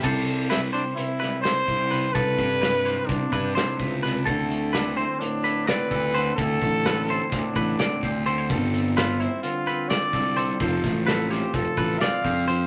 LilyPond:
<<
  \new Staff \with { instrumentName = "Clean electric guitar" } { \time 9/8 \key c \major \tempo 4. = 85 a'4 b'8 c''4 b'8 c''4 b'8 | a'4 b'8 c''4 b'8 c''4 b'8 | a'4 b'8 c''4 b'8 d''4 c''8 | a'4 b'8 c''4 b'8 d''4 c''8 |
a'4 b'8 c''4 b'8 d''4 c''8 | a'4 b'8 c''4 b'8 d''4 c''8 | }
  \new Staff \with { instrumentName = "Trumpet" } { \time 9/8 \key c \major r4 e'8 d'8 e'4 c''4. | b'2 d'2 r8 | r4 d'8 c'8 d'4 b'4. | a'2 d'2 r8 |
r4 f'8 e'8 f'4 d''4. | r4 a'8 g'8 a'4 f''4. | }
  \new Staff \with { instrumentName = "Clean electric guitar" } { \time 9/8 \key c \major << { <g e' g' c''>4 g8 g'4 g8 e'8 e'16 g'16 g'8 | g'4 e'8 g'4 e'16 g'16 e'8 b'8 b'8 | <a c' e' a'>4 c'8 e'4 e'8 c'8 a'8 a'8 | e'4 c'8 e'4 e'8 c'8 c''8 a'16 c''16 |
<c' f' a'>4 c'8 c'4 c'8 f'8 a'8 a'8 | c''4 c'8 f'4 f'8 c'8 c''8 c''8 | } \\ { c8 g8 r4 c2 c8 | c8 g4. c2 c8 | d8 a4. a,2 d8 | d8 a4. a,2 d8 |
g8 c'8 r4 d2 g8 | f8 a4. f2 f8 | } >> }
  \new Staff \with { instrumentName = "Fingered electric bass" } { \clef bass \time 9/8 \key c \major c,2 r4. c,4 | c,8 g,4. c,16 r16 g,8 r8 des,4 | d,2 r4. d,4 | d,8 a,,4. d,16 r16 a,,8 r8 d,4 |
g,,2 r4. c,4 | f,,8 a,,4. f,,16 r16 a,,8 r8 f,4 | }
  \new DrumStaff \with { instrumentName = "Drums" } \drummode { \time 9/8 <cymc bd>8 hh8 <hh sn>8 hh8 hh8 <hh sn>8 <hh sn>8 <hh bd>8 hh8 | <hh bd>8 <hh bd>8 <hh sn>8 <hh sn>8 <hh bd>8 <hh bd>8 <hh sn>8 <hh bd>8 <hh sn>8 | <hh bd>8 hh8 <hh sn>8 hh8 hh8 hh8 <hh sn>8 <hh bd>8 hh8 | <hh bd>8 <hh bd>8 <hh sn>8 hh8 <hh bd sn>8 <hh bd>8 <hh sn>8 <hh bd>8 hh8 |
<hh bd>8 hh8 <hh sn>8 hh8 hh8 hh8 <hh sn>8 <hh bd sn>8 hh8 | <hh bd>8 <hh bd sn>8 <hh sn>8 <hh sn>8 <hh bd>8 <hh bd>8 <hh sn>8 <hh bd>8 hh8 | }
>>